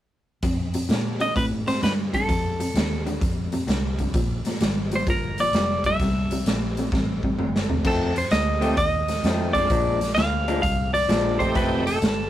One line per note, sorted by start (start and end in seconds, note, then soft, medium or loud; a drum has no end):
0.43 0.88 F2 medium
0.43 0.71 F2 medium
0.43 0.72 C3 medium
0.43 kick medium
0.43 closed hi-hat medium
0.74 0.88 F2 medium
0.74 0.88 C3 medium
0.74 closed hi-hat medium
0.89 1.17 F2 medium
0.89 1.34 A#2 medium
0.89 1.17 D3 medium
0.89 snare medium
0.89 closed hi-hat medium
1.20 1.34 F2 medium
1.20 1.34 D3 medium
1.20 1.35 D#5 medium
1.20 closed hi-hat medium
1.35 1.64 F2 medium
1.35 1.81 A2 medium
1.35 1.64 C3 medium
1.35 1.45 B4 medium
1.35 kick medium
1.35 closed hi-hat medium
1.67 1.81 F2 medium
1.67 1.81 C3 medium
1.67 1.83 C5 medium
1.67 snare soft
1.67 closed hi-hat medium
1.82 2.10 F2 medium
1.82 2.27 G2 medium
1.82 2.10 D3 medium
1.82 1.92 B4 medium
1.82 snare medium
1.82 closed hi-hat medium
2.14 2.27 F2 medium
2.14 2.27 D3 medium
2.14 3.03 A4 medium
2.14 kick medium
2.14 closed hi-hat medium
2.28 2.56 F2 medium
2.28 2.74 F2 medium
2.28 2.56 C3 medium
2.28 kick medium
2.28 closed hi-hat medium
2.60 2.74 F2 medium
2.60 2.74 C3 medium
2.60 closed hi-hat medium
2.74 3.20 D#2 medium
2.74 3.03 F2 medium
2.74 3.04 D3 medium
2.74 snare loud
2.74 closed hi-hat medium
3.06 3.20 F2 medium
3.06 3.20 D3 medium
3.06 closed hi-hat medium
3.21 3.49 F2 medium
3.21 3.67 F2 medium
3.21 3.49 C3 medium
3.21 kick loud
3.21 closed hi-hat medium
3.52 3.66 F2 medium
3.52 3.67 C3 medium
3.52 closed hi-hat soft
3.67 4.12 C2 medium
3.67 3.95 F2 medium
3.67 3.96 D3 medium
3.67 snare medium
3.67 closed hi-hat medium
3.99 4.13 F2 medium
3.99 4.13 D3 medium
3.99 kick medium
3.99 closed hi-hat soft
4.14 4.43 A#1 medium
4.14 4.42 A#2 medium
4.14 4.43 F3 medium
4.14 kick medium
4.14 closed hi-hat medium
4.45 4.60 A#2 medium
4.45 4.60 F3 medium
4.45 muted fingered electric bass stroke soft
4.45 snare soft
4.45 closed hi-hat medium
4.60 5.06 G#1 medium
4.60 4.89 A#2 medium
4.60 4.89 G3 medium
4.60 snare medium
4.60 closed hi-hat medium
4.92 5.06 A#2 medium
4.92 5.06 G3 medium
4.92 5.09 C5 medium
4.92 closed hi-hat medium
5.07 5.52 G1 medium
5.07 5.35 A#2 medium
5.07 5.35 F3 medium
5.07 5.40 A#4 medium
5.07 kick loud
5.07 closed hi-hat medium
5.38 5.53 A#2 medium
5.38 5.53 F3 medium
5.38 5.86 D5 medium
5.38 closed hi-hat medium
5.53 5.98 F1 medium
5.53 5.82 A#2 medium
5.53 5.82 G3 medium
5.53 snare medium
5.53 closed hi-hat medium
5.84 5.99 A#2 medium
5.84 5.99 G3 medium
5.84 7.36 E5 medium
5.84 kick medium
5.84 closed hi-hat medium
6.00 6.45 C2 medium
6.00 6.28 C3 medium
6.00 6.28 G3 medium
6.00 kick medium
6.00 snare soft
6.00 closed hi-hat medium
6.31 6.45 C3 medium
6.31 6.45 G3 medium
6.31 closed hi-hat medium
6.46 6.91 A#1 medium
6.46 6.74 C3 medium
6.46 6.75 A3 medium
6.46 snare medium
6.46 closed hi-hat medium
6.77 6.92 C3 medium
6.77 6.92 A3 medium
6.77 closed hi-hat medium
6.92 7.37 A1 medium
6.92 7.20 C3 medium
6.92 7.21 G3 medium
6.92 kick loud
6.92 snare soft
7.23 7.37 C3 medium
7.23 7.38 G3 medium
7.23 kick medium
7.39 7.84 G1 medium
7.39 7.67 C3 medium
7.39 7.67 A3 medium
7.39 mid tom medium
7.56 snare medium
7.69 7.83 C3 medium
7.69 7.84 A3 medium
7.69 floor tom medium
7.84 8.16 F2 medium
7.84 8.30 F2 medium
7.84 8.15 D#3 medium
7.84 8.14 A3 medium
7.84 8.14 C4 medium
7.84 8.17 A4 medium
7.84 kick loud
7.84 crash medium
8.15 8.33 C5 medium
8.15 muted clean electric guitar stroke soft
8.15 closed hi-hat medium
8.31 8.76 D2 medium
8.31 8.76 D#5 medium
8.31 muted clean electric guitar stroke soft
8.31 snare loud
8.31 closed hi-hat medium
8.60 8.77 F2 medium
8.60 8.77 D#3 medium
8.60 8.75 A3 medium
8.60 8.77 A3 medium
8.60 8.75 C4 medium
8.60 8.77 C4 medium
8.60 8.76 D#4 medium
8.60 8.76 G4 medium
8.60 closed hi-hat medium
8.77 9.23 D#2 medium
8.77 9.53 D#5 medium
8.77 muted clean electric guitar stroke soft
8.77 kick loud
8.77 closed hi-hat medium
9.08 muted clean electric guitar stroke soft
9.08 snare soft
9.08 closed hi-hat medium
9.23 9.69 F2 medium
9.23 9.55 F2 medium
9.23 9.55 D#3 medium
9.23 9.54 A3 medium
9.23 9.54 C4 medium
9.23 snare medium
9.23 closed hi-hat medium
9.53 9.68 G#3 medium
9.53 9.69 C4 medium
9.53 9.69 D4 medium
9.53 9.69 F4 medium
9.53 10.14 D5 medium
9.53 muted clean electric guitar stroke soft
9.53 kick medium
9.53 snare soft
9.53 closed hi-hat medium
9.70 10.15 A#1 medium
9.70 10.02 A#2 medium
9.70 10.02 F3 medium
9.70 10.01 G#3 medium
9.70 10.01 D4 medium
9.70 kick medium
9.70 closed hi-hat medium
10.01 muted clean electric guitar stroke soft
10.01 snare soft
10.01 closed hi-hat medium
10.15 10.62 D2 medium
10.15 10.61 F5 loud
10.15 muted clean electric guitar stroke soft
10.15 snare loud
10.15 closed hi-hat medium
10.48 10.62 A#2 medium
10.48 10.63 F3 medium
10.48 10.63 G#3 medium
10.48 10.63 D4 medium
10.48 closed hi-hat medium
10.62 11.08 C2 medium
10.62 10.92 F5 medium
10.62 muted clean electric guitar stroke soft
10.62 kick loud
10.62 closed hi-hat medium
10.93 11.42 D5 loud
10.93 muted clean electric guitar stroke soft
10.93 closed hi-hat medium
11.09 11.54 A#1 medium
11.09 11.40 A#2 medium
11.09 11.39 F3 medium
11.09 11.39 G#3 medium
11.09 11.38 D4 medium
11.09 snare loud
11.09 closed hi-hat medium
11.39 11.99 A3 medium
11.39 11.99 C4 medium
11.39 11.99 D#4 medium
11.39 11.99 G4 medium
11.39 11.56 C5 medium
11.39 muted clean electric guitar stroke soft
11.39 kick medium
11.39 closed hi-hat soft
11.55 12.01 F1 medium
11.55 11.86 F2 medium
11.55 11.87 D#3 medium
11.55 11.86 A3 medium
11.55 11.86 C4 medium
11.55 11.86 B4 medium
11.55 kick loud
11.55 closed hi-hat medium
11.87 12.30 A4 medium
11.87 muted clean electric guitar stroke soft
11.87 closed hi-hat medium
12.02 12.30 G1 medium
12.02 muted clean electric guitar stroke soft
12.02 snare loud
12.02 closed hi-hat medium